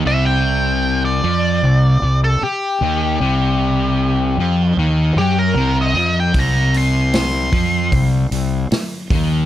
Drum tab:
HH |--------|--------|oooooooo|
SD |--------|--------|--o---o-|
BD |--------|--------|o--oo--o|